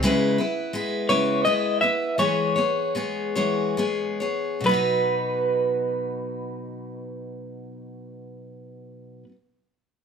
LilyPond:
<<
  \new Staff \with { instrumentName = "Clean electric guitar" } { \time 6/8 \key b \major \tempo 4. = 44 r4. cis''8 dis''8 e''8 | cis''2 r4 | b'2.~ | b'2. | }
  \new Staff \with { instrumentName = "Steel-string acoustic guitar" } { \time 6/8 \key b \major <cis gis b e' b'>8 <b e' b'>8 <gis b e' b'>8 <cis gis b e' b'>8 <gis b e' b'>8 <b e' b'>8 | <e gis b gis' cis''>8 <b gis' cis''>8 <gis b gis' cis''>8 <e gis b gis' cis''>8 <gis b gis' cis''>8 <b gis' cis''>8 | <b, fis b dis' fis' b'>2.~ | <b, fis b dis' fis' b'>2. | }
>>